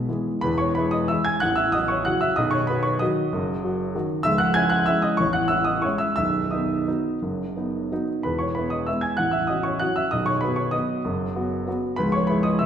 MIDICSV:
0, 0, Header, 1, 2, 480
1, 0, Start_track
1, 0, Tempo, 340909
1, 601, Time_signature, 3, 2, 24, 8
1, 1544, Tempo, 322407
1, 2984, Tempo, 312989
1, 8264, Tempo, 342466
1, 12104, Tempo, 311850
1, 18896, End_track
2, 0, Start_track
2, 0, Title_t, "Grand piano"
2, 0, Program_c, 0, 0
2, 0, Control_c, 0, 64, 127
2, 0, Note_on_c, 0, 47, 47
2, 0, Note_on_c, 0, 56, 34
2, 0, Note_on_c, 0, 59, 38
2, 0, Note_on_c, 0, 76, 62
2, 122, Note_on_c, 0, 52, 37
2, 127, Control_c, 0, 64, 0
2, 131, Note_off_c, 0, 56, 0
2, 131, Note_on_c, 0, 56, 37
2, 133, Note_off_c, 0, 59, 0
2, 133, Note_on_c, 0, 59, 34
2, 146, Note_off_c, 0, 47, 0
2, 355, Note_off_c, 0, 76, 0
2, 559, Note_off_c, 0, 52, 0
2, 563, Note_off_c, 0, 56, 0
2, 565, Note_off_c, 0, 59, 0
2, 582, Note_on_c, 0, 83, 86
2, 599, Note_on_c, 0, 71, 60
2, 615, Note_on_c, 0, 28, 50
2, 616, Note_on_c, 0, 40, 61
2, 814, Note_on_c, 0, 85, 70
2, 817, Note_off_c, 0, 71, 0
2, 825, Note_off_c, 0, 83, 0
2, 827, Note_on_c, 0, 73, 54
2, 922, Control_c, 0, 64, 127
2, 1053, Note_off_c, 0, 73, 0
2, 1054, Note_on_c, 0, 83, 78
2, 1063, Note_off_c, 0, 85, 0
2, 1066, Note_off_c, 0, 28, 0
2, 1066, Note_off_c, 0, 40, 0
2, 1071, Note_on_c, 0, 71, 57
2, 1084, Note_on_c, 0, 56, 39
2, 1093, Note_on_c, 0, 64, 44
2, 1283, Note_on_c, 0, 87, 75
2, 1293, Note_off_c, 0, 71, 0
2, 1301, Note_off_c, 0, 83, 0
2, 1305, Note_on_c, 0, 75, 55
2, 1504, Note_off_c, 0, 56, 0
2, 1508, Note_off_c, 0, 64, 0
2, 1524, Note_on_c, 0, 88, 68
2, 1526, Note_off_c, 0, 75, 0
2, 1531, Note_off_c, 0, 87, 0
2, 1537, Note_on_c, 0, 76, 52
2, 1555, Note_on_c, 0, 52, 42
2, 1563, Control_c, 0, 64, 0
2, 1563, Note_on_c, 0, 56, 47
2, 1569, Note_on_c, 0, 64, 44
2, 1765, Note_on_c, 0, 92, 81
2, 1766, Note_off_c, 0, 76, 0
2, 1777, Note_off_c, 0, 88, 0
2, 1780, Note_on_c, 0, 80, 63
2, 1979, Note_off_c, 0, 52, 0
2, 1983, Note_off_c, 0, 56, 0
2, 1987, Note_off_c, 0, 64, 0
2, 1999, Note_on_c, 0, 90, 91
2, 2000, Note_off_c, 0, 80, 0
2, 2009, Note_off_c, 0, 92, 0
2, 2017, Note_on_c, 0, 78, 71
2, 2032, Note_on_c, 0, 33, 59
2, 2034, Note_on_c, 0, 21, 52
2, 2228, Note_on_c, 0, 88, 78
2, 2234, Note_off_c, 0, 78, 0
2, 2241, Note_off_c, 0, 90, 0
2, 2244, Note_on_c, 0, 76, 56
2, 2338, Control_c, 0, 64, 127
2, 2472, Note_off_c, 0, 76, 0
2, 2476, Note_on_c, 0, 87, 87
2, 2481, Note_off_c, 0, 88, 0
2, 2485, Note_off_c, 0, 33, 0
2, 2486, Note_off_c, 0, 21, 0
2, 2493, Note_on_c, 0, 75, 60
2, 2507, Note_on_c, 0, 54, 40
2, 2512, Note_on_c, 0, 66, 45
2, 2713, Note_on_c, 0, 85, 72
2, 2723, Note_off_c, 0, 75, 0
2, 2731, Note_off_c, 0, 87, 0
2, 2731, Note_on_c, 0, 73, 52
2, 2943, Note_off_c, 0, 54, 0
2, 2945, Note_off_c, 0, 66, 0
2, 2961, Note_on_c, 0, 90, 82
2, 2962, Note_off_c, 0, 73, 0
2, 2971, Note_off_c, 0, 85, 0
2, 2977, Note_on_c, 0, 78, 64
2, 2995, Note_on_c, 0, 49, 40
2, 2996, Control_c, 0, 64, 0
2, 2999, Note_on_c, 0, 54, 44
2, 3006, Note_on_c, 0, 66, 47
2, 3203, Note_on_c, 0, 88, 78
2, 3205, Note_off_c, 0, 78, 0
2, 3214, Note_off_c, 0, 90, 0
2, 3217, Note_on_c, 0, 76, 65
2, 3416, Note_off_c, 0, 49, 0
2, 3419, Note_off_c, 0, 54, 0
2, 3423, Note_off_c, 0, 66, 0
2, 3437, Note_off_c, 0, 76, 0
2, 3439, Note_on_c, 0, 87, 81
2, 3446, Note_off_c, 0, 88, 0
2, 3455, Note_on_c, 0, 75, 65
2, 3469, Note_on_c, 0, 23, 50
2, 3470, Note_on_c, 0, 35, 61
2, 3663, Note_on_c, 0, 85, 78
2, 3673, Note_off_c, 0, 75, 0
2, 3681, Note_off_c, 0, 87, 0
2, 3684, Note_on_c, 0, 73, 63
2, 3722, Control_c, 0, 64, 127
2, 3913, Note_off_c, 0, 73, 0
2, 3917, Note_on_c, 0, 83, 76
2, 3919, Note_off_c, 0, 85, 0
2, 3924, Note_off_c, 0, 23, 0
2, 3925, Note_off_c, 0, 35, 0
2, 3935, Note_on_c, 0, 71, 64
2, 3956, Note_on_c, 0, 54, 44
2, 3961, Note_on_c, 0, 66, 46
2, 4154, Note_on_c, 0, 85, 76
2, 4165, Note_off_c, 0, 71, 0
2, 4170, Note_on_c, 0, 73, 51
2, 4174, Note_off_c, 0, 83, 0
2, 4396, Note_off_c, 0, 54, 0
2, 4399, Note_off_c, 0, 66, 0
2, 4409, Note_off_c, 0, 73, 0
2, 4410, Note_on_c, 0, 87, 77
2, 4419, Note_off_c, 0, 85, 0
2, 4427, Note_on_c, 0, 75, 62
2, 4447, Note_on_c, 0, 51, 44
2, 4451, Note_on_c, 0, 54, 43
2, 4454, Note_on_c, 0, 66, 52
2, 4455, Control_c, 0, 64, 0
2, 4871, Note_off_c, 0, 51, 0
2, 4873, Note_off_c, 0, 54, 0
2, 4875, Note_off_c, 0, 66, 0
2, 4922, Note_on_c, 0, 30, 58
2, 4924, Note_on_c, 0, 42, 58
2, 5213, Control_c, 0, 64, 127
2, 5374, Note_off_c, 0, 30, 0
2, 5374, Note_off_c, 0, 42, 0
2, 5401, Note_on_c, 0, 54, 41
2, 5407, Note_on_c, 0, 66, 45
2, 5827, Note_off_c, 0, 54, 0
2, 5830, Note_off_c, 0, 66, 0
2, 5876, Note_on_c, 0, 51, 44
2, 5880, Note_on_c, 0, 54, 46
2, 5888, Control_c, 0, 64, 0
2, 5890, Note_on_c, 0, 66, 48
2, 6042, Note_off_c, 0, 75, 0
2, 6095, Note_off_c, 0, 87, 0
2, 6301, Note_off_c, 0, 51, 0
2, 6303, Note_off_c, 0, 54, 0
2, 6309, Note_off_c, 0, 66, 0
2, 6310, Note_on_c, 0, 88, 95
2, 6332, Note_on_c, 0, 76, 69
2, 6344, Note_on_c, 0, 37, 62
2, 6345, Note_on_c, 0, 25, 55
2, 6540, Note_on_c, 0, 90, 85
2, 6556, Note_off_c, 0, 76, 0
2, 6562, Note_off_c, 0, 88, 0
2, 6563, Note_on_c, 0, 78, 65
2, 6598, Control_c, 0, 64, 127
2, 6781, Note_on_c, 0, 92, 95
2, 6794, Note_off_c, 0, 78, 0
2, 6798, Note_on_c, 0, 80, 74
2, 6799, Note_off_c, 0, 90, 0
2, 6805, Note_off_c, 0, 37, 0
2, 6806, Note_off_c, 0, 25, 0
2, 6814, Note_on_c, 0, 61, 45
2, 6827, Note_on_c, 0, 64, 48
2, 7021, Note_on_c, 0, 90, 85
2, 7034, Note_off_c, 0, 80, 0
2, 7041, Note_on_c, 0, 78, 62
2, 7043, Note_off_c, 0, 92, 0
2, 7256, Note_off_c, 0, 61, 0
2, 7263, Note_off_c, 0, 64, 0
2, 7269, Note_on_c, 0, 88, 85
2, 7279, Note_off_c, 0, 78, 0
2, 7287, Note_off_c, 0, 90, 0
2, 7293, Note_on_c, 0, 76, 64
2, 7309, Note_on_c, 0, 56, 47
2, 7315, Note_on_c, 0, 61, 42
2, 7321, Note_on_c, 0, 64, 48
2, 7325, Control_c, 0, 64, 0
2, 7520, Note_on_c, 0, 87, 82
2, 7525, Note_off_c, 0, 76, 0
2, 7531, Note_off_c, 0, 88, 0
2, 7541, Note_on_c, 0, 75, 69
2, 7738, Note_off_c, 0, 56, 0
2, 7741, Note_off_c, 0, 61, 0
2, 7745, Note_off_c, 0, 64, 0
2, 7751, Note_on_c, 0, 85, 82
2, 7764, Note_off_c, 0, 75, 0
2, 7767, Note_on_c, 0, 73, 61
2, 7770, Note_off_c, 0, 87, 0
2, 7785, Note_on_c, 0, 21, 55
2, 7789, Note_on_c, 0, 33, 53
2, 7991, Note_on_c, 0, 90, 81
2, 7994, Note_off_c, 0, 73, 0
2, 8003, Note_off_c, 0, 85, 0
2, 8007, Note_on_c, 0, 78, 64
2, 8090, Control_c, 0, 64, 127
2, 8222, Note_on_c, 0, 88, 78
2, 8239, Note_off_c, 0, 78, 0
2, 8248, Note_on_c, 0, 76, 51
2, 8249, Note_off_c, 0, 21, 0
2, 8249, Note_off_c, 0, 90, 0
2, 8251, Note_off_c, 0, 33, 0
2, 8261, Note_on_c, 0, 61, 42
2, 8267, Note_on_c, 0, 64, 46
2, 8456, Note_on_c, 0, 87, 77
2, 8471, Note_off_c, 0, 76, 0
2, 8472, Note_on_c, 0, 75, 50
2, 8476, Note_off_c, 0, 88, 0
2, 8685, Note_off_c, 0, 61, 0
2, 8688, Note_off_c, 0, 64, 0
2, 8700, Note_on_c, 0, 85, 68
2, 8705, Note_off_c, 0, 75, 0
2, 8714, Note_off_c, 0, 87, 0
2, 8717, Note_on_c, 0, 73, 54
2, 8739, Note_on_c, 0, 56, 37
2, 8740, Note_on_c, 0, 61, 42
2, 8743, Note_on_c, 0, 64, 44
2, 8753, Control_c, 0, 64, 0
2, 8933, Note_on_c, 0, 88, 77
2, 8946, Note_off_c, 0, 73, 0
2, 8950, Note_on_c, 0, 76, 54
2, 8955, Note_off_c, 0, 85, 0
2, 9155, Note_off_c, 0, 88, 0
2, 9166, Note_off_c, 0, 56, 0
2, 9166, Note_off_c, 0, 61, 0
2, 9168, Note_off_c, 0, 64, 0
2, 9171, Note_off_c, 0, 76, 0
2, 9176, Note_on_c, 0, 88, 87
2, 9192, Note_on_c, 0, 76, 65
2, 9205, Note_on_c, 0, 35, 52
2, 9210, Note_on_c, 0, 23, 49
2, 9518, Control_c, 0, 64, 127
2, 9650, Note_off_c, 0, 76, 0
2, 9666, Note_on_c, 0, 87, 56
2, 9677, Note_off_c, 0, 35, 0
2, 9677, Note_off_c, 0, 88, 0
2, 9678, Note_on_c, 0, 75, 43
2, 9680, Note_off_c, 0, 23, 0
2, 9696, Note_on_c, 0, 59, 37
2, 9700, Note_on_c, 0, 63, 46
2, 10131, Note_off_c, 0, 59, 0
2, 10133, Note_off_c, 0, 63, 0
2, 10177, Note_on_c, 0, 54, 37
2, 10179, Note_on_c, 0, 59, 35
2, 10188, Note_on_c, 0, 63, 41
2, 10197, Control_c, 0, 64, 0
2, 10612, Note_off_c, 0, 54, 0
2, 10613, Note_off_c, 0, 59, 0
2, 10619, Note_off_c, 0, 63, 0
2, 10667, Note_on_c, 0, 30, 43
2, 10668, Note_on_c, 0, 42, 45
2, 10930, Control_c, 0, 64, 127
2, 11133, Note_off_c, 0, 30, 0
2, 11133, Note_off_c, 0, 42, 0
2, 11149, Note_on_c, 0, 59, 38
2, 11157, Note_on_c, 0, 63, 36
2, 11589, Note_off_c, 0, 59, 0
2, 11593, Note_off_c, 0, 63, 0
2, 11642, Note_on_c, 0, 54, 37
2, 11647, Note_on_c, 0, 59, 32
2, 11649, Control_c, 0, 64, 0
2, 11658, Note_on_c, 0, 63, 40
2, 11811, Note_off_c, 0, 75, 0
2, 11861, Note_off_c, 0, 87, 0
2, 12060, Note_off_c, 0, 54, 0
2, 12063, Note_off_c, 0, 59, 0
2, 12069, Note_off_c, 0, 63, 0
2, 12086, Note_on_c, 0, 83, 67
2, 12102, Note_on_c, 0, 71, 53
2, 12119, Note_on_c, 0, 40, 46
2, 12122, Note_on_c, 0, 28, 40
2, 12318, Note_on_c, 0, 85, 59
2, 12328, Note_off_c, 0, 71, 0
2, 12337, Note_off_c, 0, 83, 0
2, 12338, Note_on_c, 0, 73, 47
2, 12427, Control_c, 0, 64, 127
2, 12568, Note_on_c, 0, 83, 65
2, 12570, Note_off_c, 0, 73, 0
2, 12577, Note_off_c, 0, 85, 0
2, 12585, Note_off_c, 0, 40, 0
2, 12586, Note_off_c, 0, 28, 0
2, 12590, Note_on_c, 0, 71, 53
2, 12603, Note_on_c, 0, 59, 34
2, 12611, Note_on_c, 0, 64, 36
2, 12805, Note_on_c, 0, 87, 62
2, 12817, Note_off_c, 0, 71, 0
2, 12822, Note_on_c, 0, 75, 45
2, 12823, Note_off_c, 0, 83, 0
2, 13033, Note_off_c, 0, 59, 0
2, 13037, Note_off_c, 0, 64, 0
2, 13052, Note_off_c, 0, 75, 0
2, 13057, Note_on_c, 0, 88, 63
2, 13060, Note_off_c, 0, 87, 0
2, 13074, Note_on_c, 0, 76, 47
2, 13088, Note_on_c, 0, 56, 35
2, 13096, Control_c, 0, 64, 0
2, 13101, Note_on_c, 0, 59, 34
2, 13105, Note_on_c, 0, 64, 37
2, 13284, Note_on_c, 0, 92, 67
2, 13296, Note_off_c, 0, 76, 0
2, 13302, Note_on_c, 0, 80, 54
2, 13304, Note_off_c, 0, 88, 0
2, 13508, Note_off_c, 0, 56, 0
2, 13515, Note_off_c, 0, 59, 0
2, 13517, Note_off_c, 0, 64, 0
2, 13522, Note_on_c, 0, 90, 77
2, 13526, Note_off_c, 0, 80, 0
2, 13533, Note_off_c, 0, 92, 0
2, 13539, Note_on_c, 0, 78, 65
2, 13552, Note_on_c, 0, 21, 42
2, 13555, Note_on_c, 0, 33, 45
2, 13748, Note_on_c, 0, 88, 62
2, 13762, Note_off_c, 0, 78, 0
2, 13766, Note_on_c, 0, 76, 55
2, 13771, Note_off_c, 0, 90, 0
2, 13823, Control_c, 0, 64, 127
2, 13991, Note_on_c, 0, 87, 66
2, 13999, Note_off_c, 0, 76, 0
2, 14007, Note_off_c, 0, 88, 0
2, 14013, Note_off_c, 0, 21, 0
2, 14014, Note_off_c, 0, 33, 0
2, 14015, Note_on_c, 0, 75, 53
2, 14032, Note_on_c, 0, 61, 38
2, 14034, Note_on_c, 0, 66, 36
2, 14239, Note_on_c, 0, 85, 68
2, 14248, Note_off_c, 0, 75, 0
2, 14253, Note_off_c, 0, 87, 0
2, 14262, Note_on_c, 0, 73, 47
2, 14474, Note_off_c, 0, 61, 0
2, 14475, Note_off_c, 0, 66, 0
2, 14487, Note_on_c, 0, 90, 75
2, 14497, Note_off_c, 0, 73, 0
2, 14501, Note_on_c, 0, 78, 54
2, 14504, Note_off_c, 0, 85, 0
2, 14522, Note_on_c, 0, 54, 38
2, 14530, Note_on_c, 0, 61, 38
2, 14532, Control_c, 0, 64, 0
2, 14533, Note_on_c, 0, 66, 41
2, 14738, Note_off_c, 0, 78, 0
2, 14738, Note_on_c, 0, 88, 74
2, 14748, Note_off_c, 0, 90, 0
2, 14757, Note_on_c, 0, 76, 57
2, 14951, Note_off_c, 0, 54, 0
2, 14955, Note_off_c, 0, 61, 0
2, 14957, Note_off_c, 0, 66, 0
2, 14973, Note_on_c, 0, 87, 80
2, 14977, Note_off_c, 0, 76, 0
2, 14984, Note_off_c, 0, 88, 0
2, 14988, Note_on_c, 0, 75, 62
2, 15005, Note_on_c, 0, 35, 52
2, 15007, Note_on_c, 0, 23, 47
2, 15199, Note_on_c, 0, 85, 74
2, 15205, Note_off_c, 0, 75, 0
2, 15214, Note_off_c, 0, 87, 0
2, 15216, Note_on_c, 0, 73, 53
2, 15272, Control_c, 0, 64, 127
2, 15430, Note_on_c, 0, 83, 76
2, 15438, Note_off_c, 0, 73, 0
2, 15446, Note_off_c, 0, 85, 0
2, 15446, Note_on_c, 0, 71, 58
2, 15450, Note_off_c, 0, 35, 0
2, 15451, Note_off_c, 0, 23, 0
2, 15464, Note_on_c, 0, 59, 42
2, 15472, Note_on_c, 0, 66, 44
2, 15666, Note_on_c, 0, 85, 67
2, 15672, Note_off_c, 0, 71, 0
2, 15676, Note_on_c, 0, 73, 49
2, 15681, Note_off_c, 0, 83, 0
2, 15891, Note_off_c, 0, 59, 0
2, 15895, Note_off_c, 0, 66, 0
2, 15900, Note_on_c, 0, 87, 75
2, 15909, Note_off_c, 0, 73, 0
2, 15918, Note_on_c, 0, 75, 55
2, 15921, Note_off_c, 0, 85, 0
2, 15939, Note_on_c, 0, 59, 40
2, 15940, Note_on_c, 0, 54, 46
2, 15945, Note_on_c, 0, 66, 45
2, 15950, Control_c, 0, 64, 0
2, 16362, Note_off_c, 0, 54, 0
2, 16362, Note_off_c, 0, 59, 0
2, 16365, Note_off_c, 0, 66, 0
2, 16415, Note_on_c, 0, 42, 55
2, 16417, Note_on_c, 0, 30, 50
2, 16718, Control_c, 0, 64, 127
2, 16872, Note_off_c, 0, 42, 0
2, 16873, Note_off_c, 0, 30, 0
2, 16892, Note_on_c, 0, 59, 40
2, 16901, Note_on_c, 0, 66, 49
2, 17328, Note_off_c, 0, 59, 0
2, 17332, Note_off_c, 0, 66, 0
2, 17377, Note_on_c, 0, 54, 40
2, 17382, Note_on_c, 0, 59, 47
2, 17393, Control_c, 0, 64, 0
2, 17394, Note_on_c, 0, 66, 46
2, 17543, Note_off_c, 0, 75, 0
2, 17596, Note_off_c, 0, 87, 0
2, 17806, Note_off_c, 0, 54, 0
2, 17809, Note_off_c, 0, 59, 0
2, 17815, Note_off_c, 0, 66, 0
2, 17826, Note_on_c, 0, 83, 83
2, 17841, Note_on_c, 0, 71, 63
2, 17860, Note_on_c, 0, 37, 63
2, 17863, Note_on_c, 0, 25, 54
2, 18065, Note_off_c, 0, 71, 0
2, 18069, Note_on_c, 0, 85, 70
2, 18075, Note_off_c, 0, 83, 0
2, 18089, Note_on_c, 0, 73, 57
2, 18098, Control_c, 0, 64, 127
2, 18298, Note_on_c, 0, 83, 73
2, 18313, Note_off_c, 0, 73, 0
2, 18318, Note_on_c, 0, 71, 53
2, 18319, Note_off_c, 0, 37, 0
2, 18320, Note_off_c, 0, 85, 0
2, 18321, Note_off_c, 0, 25, 0
2, 18334, Note_on_c, 0, 56, 45
2, 18340, Note_on_c, 0, 64, 50
2, 18545, Note_on_c, 0, 87, 71
2, 18552, Note_off_c, 0, 71, 0
2, 18559, Note_off_c, 0, 83, 0
2, 18568, Note_on_c, 0, 75, 51
2, 18775, Note_off_c, 0, 56, 0
2, 18778, Note_off_c, 0, 64, 0
2, 18786, Note_on_c, 0, 88, 70
2, 18801, Note_off_c, 0, 75, 0
2, 18801, Note_on_c, 0, 76, 53
2, 18807, Note_off_c, 0, 87, 0
2, 18816, Note_on_c, 0, 49, 45
2, 18827, Note_on_c, 0, 56, 39
2, 18833, Note_on_c, 0, 64, 50
2, 18838, Control_c, 0, 64, 0
2, 18896, Note_off_c, 0, 49, 0
2, 18896, Note_off_c, 0, 56, 0
2, 18896, Note_off_c, 0, 64, 0
2, 18896, Note_off_c, 0, 76, 0
2, 18896, Note_off_c, 0, 88, 0
2, 18896, End_track
0, 0, End_of_file